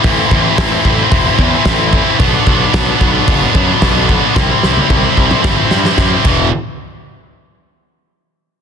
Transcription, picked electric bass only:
\new Staff \with { instrumentName = "Picked electric bass" } { \clef bass \time 4/4 \key b \phrygian \tempo 4 = 111 a,,8 a,,8 a,,8 a,,8 e,,8 e,8 a,,4 | b,,8 b,,8 b,,8 b,,8 fis,,8 fis,8 b,,4 | c,8 c,8 c,8 c,8 g,,8 g,8 fis,8 e,,8 | r1 | }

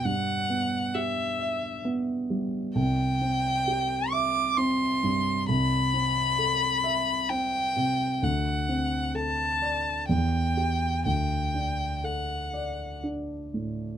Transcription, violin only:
\new Staff \with { instrumentName = "Violin" } { \time 3/4 \key e \minor \tempo 4 = 65 fis''4 e''4 r4 | \key d \mixolydian g''4. d'''8 c'''4 | b''2 g''4 | fis''4 a''4 g''4 |
g''4 fis''4 r4 | }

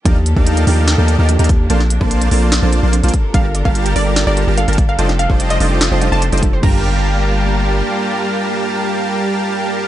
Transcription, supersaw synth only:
\new Staff \with { instrumentName = "Supersaw synth" } { \time 4/4 \key g \minor \tempo 4 = 146 <ees' bes' d'' f'' g'' a''>16 r8 <ees' bes' d'' f'' g'' a''>8. <ees' bes' d'' f'' g'' a''>8. <ees' bes' d'' f'' g'' a''>8 <ees' bes' d'' f'' g'' a''>16 r16 <ees' bes' d'' f'' g'' a''>16 r8 | <bes f' c'' d'' a''>16 r8 <bes f' c'' d'' a''>8. <bes f' c'' d'' a''>8. <bes f' c'' d'' a''>8 <bes f' c'' d'' a''>16 r16 <bes f' c'' d'' a''>16 r8 | <g g' bes' f'' a''>16 r8 <g g' bes' f'' a''>8. <g g' bes' f'' a''>8. <g g' bes' f'' a''>8 <g g' bes' f'' a''>16 r16 <g g' bes' f'' a''>16 r8 | <f' c'' d'' ees'' g'' a''>16 r8 <f' c'' d'' ees'' g'' a''>8. <f' c'' d'' ees'' g'' a''>8. <f' c'' d'' ees'' g'' a''>8 <f' c'' d'' ees'' g'' a''>16 r16 <f' c'' d'' ees'' g'' a''>16 r8 |
<g g' bes' f'' a''>1~ | <g g' bes' f'' a''>1 | }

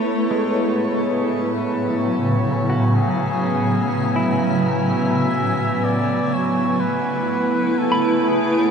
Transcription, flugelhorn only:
\new Staff \with { instrumentName = "Flugelhorn" } { \time 3/4 \key fis \minor \tempo 4 = 62 r8 fis'8 gis'8 b'8 cis''4 | gis'4. r8 e''4 | d''8 cis''8 b'4 a'8 gis'8 | }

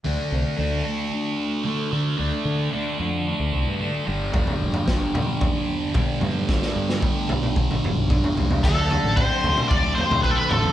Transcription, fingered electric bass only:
\new Staff \with { instrumentName = "Fingered electric bass" } { \clef bass \time 4/4 \key g \mixolydian \tempo 4 = 112 d,16 r16 c,16 r16 d,8 r2 d8 | d,16 r16 d8 r8 f,8. d,16 c,16 g,8 r16 g,,8 | g,,16 r16 e,,16 r16 g,,8 r2 g,8 | g,,16 r16 g,8 r8 b,,8. g,,16 e,,16 b,,8 r16 c,8 |
d,8. a,,8 r16 d,16 r16 d,8 r16 d,8 r16 a,,16 r16 | }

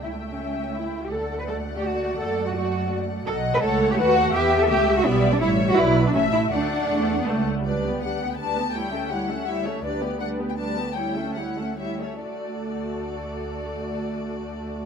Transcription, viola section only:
\new Staff \with { instrumentName = "Viola section" } { \time 3/4 \key d \major \tempo 4 = 164 a2. | a2.~ | a2. | fis4 a2 |
b4 a4 g4 | g4 fis4 a4 | a4 a8. b16 a8. g16 | <g d'>8 b8 <g d'>8 b8 <g d'>8 b8 |
<g e'>8 <a cis'>8 <g e'>8 <a cis'>8 <g e'>8 <a cis'>8 | <g d'>8 b8 <g d'>8 b8 <g d'>8 b8 | <g e'>8 <a cis'>8 <g e'>8 <a cis'>8 <g e'>8 <a cis'>8 | <a fis'>2.~ |
<a fis'>2. | }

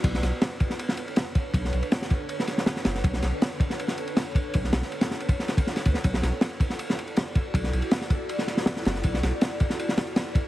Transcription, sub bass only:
\new Staff \with { instrumentName = "Sub bass" } { \clef bass \time 4/4 \key b \minor \tempo 4 = 160 b,,8 b,,8 r2. | b,,8 b,,8 r2 r8 fis,,8 | b,,8 b,,8 r2. | b,,8 b,,8 r2 r8 d,8 |
b,,8 b,,8 r2. | b,,8 b,,8 r2 r8 fis,,8 | b,,8 b,,8 r2. | }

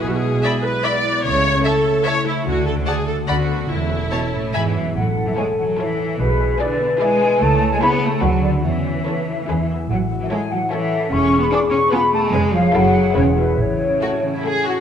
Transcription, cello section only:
\new Staff \with { instrumentName = "Cello section" } { \clef bass \time 3/4 \key a \major \tempo 4 = 147 << { b,4 r2 | cis4 r2 | d4 r4 d4 | e,4 r4 e4 |
fis8. e16 gis8 fis8 e4 | b,4 d4 gis4 | a8. gis16 b8 a8 fis8 d8 | e2~ e8 r8 |
fis8. e16 gis8 fis8 e4 | cis'8. b16 d'8 cis'8 b8 a8 | gis8 eis8 fis4 cis8 b,8 | cis2 r4 | } \\ { r2. | r2. | r2. | r4 b,8 a,8 gis,8 fis,8 |
r2. | r2. | r2. | r2. |
r2. | r2. | r2. | r2. | } >> }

